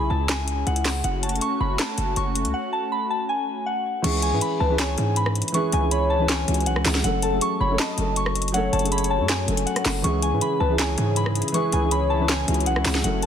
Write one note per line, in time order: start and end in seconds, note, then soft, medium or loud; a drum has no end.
0.00 0.10 B1 loud
0.00 1.01 C#3 medium
0.00 1.00 C#4 medium
0.00 1.01 E4 medium
0.00 1.01 G#4 medium
0.10 0.64 C#2 loud
0.10 0.27 A5 medium
0.29 0.65 G#5 loud
0.29 snare loud
0.29 clap medium
0.29 closed hi-hat medium
0.48 closed hi-hat medium
0.67 1.03 C#2 loud
0.67 1.02 F#5 medium
0.67 closed hi-hat soft
0.76 closed hi-hat medium
0.85 snare medium
0.85 clap medium
0.85 open hi-hat medium
1.04 1.40 F#1 loud
1.04 4.01 A3 medium
1.04 4.01 C#4 medium
1.04 4.01 F#4 medium
1.04 1.21 F#5 medium
1.04 closed hi-hat medium
1.23 1.40 A5 medium
1.23 closed hi-hat medium
1.29 closed hi-hat medium
1.35 closed hi-hat soft
1.41 1.59 C#6 medium
1.41 closed hi-hat medium
1.60 1.78 F#1 loud
1.60 1.77 B5 medium
1.79 2.14 A5 medium
1.79 snare loud
1.79 clap medium
1.79 closed hi-hat medium
1.98 2.16 F#1 loud
1.98 closed hi-hat medium
2.16 2.46 F#1 loud
2.16 2.34 C#6 medium
2.16 closed hi-hat medium
2.35 closed hi-hat medium
2.45 2.54 C#2 medium
2.45 closed hi-hat soft
2.54 2.71 F#5 medium
2.73 2.90 A5 medium
2.92 3.09 B5 medium
3.10 3.27 A5 medium
3.29 3.64 G#5 medium
3.66 4.02 F#5 medium
4.02 4.34 C#2 loud
4.02 4.29 E3 loud
4.02 4.29 G#3 loud
4.02 4.30 C#4 medium
4.02 4.30 E4 medium
4.02 4.31 G#4 loud
4.02 4.21 C#6 medium
4.02 closed hi-hat medium
4.02 crash loud
4.22 4.58 G#4 medium
4.22 4.40 G#5 medium
4.22 closed hi-hat medium
4.30 4.41 G#2 loud
4.30 4.66 E3 medium
4.30 4.66 G#3 medium
4.30 4.67 C#4 medium
4.30 4.67 E4 medium
4.34 4.68 B4 medium
4.41 4.59 B5 medium
4.41 closed hi-hat medium
4.60 4.96 C#2 loud
4.60 4.78 B4 loud
4.60 4.77 A5 medium
4.68 4.95 E3 medium
4.68 4.95 G#3 medium
4.68 4.96 C#4 medium
4.68 4.96 E4 medium
4.68 4.97 G#4 loud
4.79 5.15 C#5 medium
4.79 5.15 G#5 loud
4.79 snare loud
4.79 clap medium
4.79 closed hi-hat medium
4.96 5.43 G#2 loud
4.96 5.48 E3 medium
4.96 5.49 G#3 medium
4.96 5.49 C#4 medium
4.96 5.50 E4 medium
4.96 closed hi-hat medium
5.00 5.50 G#4 medium
5.16 5.34 B5 medium
5.16 closed hi-hat medium
5.26 cross-stick medium
5.35 closed hi-hat medium
5.42 closed hi-hat medium
5.48 closed hi-hat medium
5.52 5.79 E3 loud
5.52 5.79 G#3 medium
5.52 5.80 C#4 medium
5.52 5.80 E4 loud
5.52 5.89 B4 loud
5.52 5.71 C#6 medium
5.52 closed hi-hat medium
5.56 5.81 G#4 loud
5.72 6.45 C#2 loud
5.72 5.90 G#5 medium
5.72 closed hi-hat medium
5.80 6.16 E3 medium
5.80 6.16 G#3 medium
5.80 6.17 C#4 medium
5.80 6.17 E4 medium
5.84 6.18 G#4 medium
5.91 6.63 C#5 medium
5.91 6.08 B5 medium
5.91 closed hi-hat medium
6.10 6.27 A5 medium
6.18 6.45 E3 medium
6.18 6.45 G#3 medium
6.18 6.46 C#4 medium
6.18 6.46 E4 medium
6.18 6.47 B4 medium
6.29 6.65 G#5 loud
6.29 snare loud
6.29 clap medium
6.29 closed hi-hat medium
6.46 6.68 C#2 loud
6.46 6.81 E3 medium
6.46 6.82 G#3 medium
6.46 6.82 C#4 medium
6.46 6.83 E4 medium
6.46 closed hi-hat medium
6.50 6.83 F#4 medium
6.54 closed hi-hat medium
6.60 closed hi-hat soft
6.66 6.78 B1 loud
6.66 7.02 F#5 medium
6.66 closed hi-hat medium
6.76 6.85 C#2 loud
6.76 cross-stick medium
6.84 7.03 C#2 loud
6.84 7.02 E3 medium
6.84 7.02 G#3 medium
6.84 7.03 C#4 medium
6.84 7.03 E4 medium
6.84 snare medium
6.84 clap medium
6.84 open hi-hat medium
6.88 7.04 G#4 medium
6.95 snare medium
7.02 7.40 F#1 loud
7.02 7.29 F#3 loud
7.02 7.29 A3 medium
7.02 7.30 C#4 medium
7.02 7.30 F#4 medium
7.02 7.21 F#5 medium
7.02 closed hi-hat medium
7.06 7.31 A4 loud
7.22 7.58 A4 medium
7.22 7.40 A5 medium
7.22 closed hi-hat medium
7.30 7.66 F#3 medium
7.30 7.66 A3 medium
7.30 7.67 C#4 medium
7.30 7.67 F#4 medium
7.34 7.68 G#4 medium
7.41 7.59 C#6 medium
7.41 closed hi-hat medium
7.60 7.78 F#1 loud
7.60 7.78 C#5 medium
7.60 7.77 B5 medium
7.68 7.94 F#3 medium
7.68 7.95 A3 medium
7.68 7.96 C#4 medium
7.68 7.96 F#4 medium
7.72 7.97 A4 medium
7.79 8.14 D#5 medium
7.79 8.15 A5 medium
7.79 snare loud
7.79 clap medium
7.79 closed hi-hat medium
7.96 8.70 F#1 loud
7.96 8.48 F#3 medium
7.96 8.49 A3 medium
7.96 8.49 C#4 medium
7.96 8.50 F#4 medium
7.96 closed hi-hat medium
8.00 8.50 A4 medium
8.16 8.34 C#6 medium
8.16 closed hi-hat medium
8.26 cross-stick medium
8.35 closed hi-hat medium
8.42 closed hi-hat medium
8.48 closed hi-hat medium
8.52 8.79 F#3 loud
8.52 8.79 A3 loud
8.52 8.80 C#4 medium
8.52 8.80 F#4 medium
8.52 8.89 C#5 loud
8.52 8.71 F#5 medium
8.52 closed hi-hat medium
8.56 8.81 A4 loud
8.73 9.21 F#1 loud
8.73 8.90 A5 medium
8.73 closed hi-hat soft
8.79 9.16 F#3 medium
8.79 9.16 A3 medium
8.79 9.17 C#4 medium
8.79 closed hi-hat medium
8.83 9.17 F#4 medium
8.83 9.18 G#4 medium
8.83 closed hi-hat medium
8.92 9.63 C#5 loud
8.92 9.09 B5 medium
8.92 closed hi-hat medium
8.98 closed hi-hat medium
9.04 closed hi-hat medium
9.10 9.27 A5 medium
9.18 9.47 F#2 loud
9.18 9.44 F#3 medium
9.18 9.45 A3 medium
9.18 9.46 C#4 medium
9.18 9.46 F#4 medium
9.18 9.47 G#4 medium
9.29 9.64 G#5 medium
9.29 snare loud
9.29 clap medium
9.29 closed hi-hat medium
9.46 9.66 F#1 loud
9.46 9.81 F#3 medium
9.46 9.82 A3 medium
9.46 9.82 C#4 medium
9.46 9.83 F#4 medium
9.46 9.83 A4 medium
9.46 closed hi-hat medium
9.57 closed hi-hat medium
9.66 10.02 F#5 medium
9.66 closed hi-hat soft
9.76 cross-stick medium
9.76 closed hi-hat medium
9.83 10.03 F#1 loud
9.83 10.02 F#3 medium
9.83 10.02 A3 medium
9.83 10.03 C#4 medium
9.83 10.03 F#4 medium
9.83 snare medium
9.83 clap medium
9.83 open hi-hat medium
9.87 10.04 A4 medium
10.02 10.34 C#2 loud
10.02 13.01 C#3 medium
10.02 10.29 E3 loud
10.02 10.29 G#3 loud
10.02 10.30 C#4 medium
10.02 13.26 C#4 medium
10.02 13.01 E4 medium
10.02 10.30 E4 medium
10.02 13.01 G#4 medium
10.02 10.21 C#6 medium
10.02 closed hi-hat medium
10.06 10.31 G#4 loud
10.22 10.58 G#4 medium
10.22 10.40 G#5 medium
10.22 closed hi-hat medium
10.30 10.41 G#2 loud
10.30 10.66 E3 medium
10.30 10.66 G#3 medium
10.30 10.67 C#4 medium
10.30 10.67 E4 medium
10.34 10.68 B4 medium
10.41 10.59 B5 medium
10.41 closed hi-hat medium
10.60 10.96 C#2 loud
10.60 10.78 B4 loud
10.60 10.77 A5 medium
10.68 10.95 E3 medium
10.68 10.95 G#3 medium
10.68 10.96 C#4 medium
10.68 10.96 E4 medium
10.68 10.97 G#4 loud
10.79 11.15 C#5 medium
10.79 11.15 G#5 loud
10.79 snare loud
10.79 clap medium
10.79 closed hi-hat medium
10.96 11.43 G#2 loud
10.96 11.48 E3 medium
10.96 11.49 G#3 medium
10.96 11.49 C#4 medium
10.96 11.50 E4 medium
10.96 11.50 G#4 medium
10.96 closed hi-hat medium
11.16 11.34 B5 medium
11.16 closed hi-hat medium
11.26 cross-stick medium
11.35 closed hi-hat medium
11.42 closed hi-hat medium
11.48 closed hi-hat medium
11.52 11.79 E3 loud
11.52 11.79 G#3 medium
11.52 11.80 C#4 medium
11.52 11.80 E4 medium
11.52 11.81 G#4 loud
11.52 11.89 B4 loud
11.52 11.71 C#6 medium
11.52 closed hi-hat medium
11.72 12.45 C#2 loud
11.72 11.90 G#5 medium
11.72 closed hi-hat medium
11.80 12.16 E3 medium
11.80 12.16 G#3 medium
11.80 12.17 C#4 medium
11.80 12.17 E4 medium
11.84 12.18 G#4 medium
11.91 12.63 C#5 loud
11.91 12.08 B5 medium
11.91 closed hi-hat medium
12.10 12.27 A5 medium
12.18 12.45 E3 medium
12.18 12.45 G#3 medium
12.18 12.46 C#4 medium
12.18 12.46 E4 medium
12.22 12.47 B4 medium
12.29 12.65 G#5 loud
12.29 snare loud
12.29 clap medium
12.29 closed hi-hat medium
12.46 12.68 C#2 loud
12.46 12.81 E3 medium
12.46 12.82 G#3 medium
12.46 12.82 C#4 medium
12.46 12.83 E4 medium
12.46 12.83 F#4 medium
12.46 closed hi-hat medium
12.54 closed hi-hat medium
12.60 closed hi-hat soft
12.66 12.78 B1 loud
12.66 13.02 F#5 medium
12.66 closed hi-hat medium
12.76 12.85 C#2 medium
12.76 cross-stick medium
12.83 13.03 C#2 loud
12.83 13.02 E3 medium
12.83 13.02 G#3 medium
12.83 13.03 C#4 medium
12.83 13.03 E4 medium
12.83 snare medium
12.83 clap medium
12.83 open hi-hat medium
12.88 13.04 G#4 medium
12.95 snare medium
13.02 13.26 F#1 loud
13.02 13.26 F#3 loud
13.02 13.26 A3 medium
13.02 13.26 C#4 medium
13.02 13.26 F#4 medium
13.02 13.26 A4 loud
13.02 13.21 F#5 medium
13.02 closed hi-hat medium
13.22 13.26 A4 medium
13.22 13.26 A5 medium
13.22 closed hi-hat medium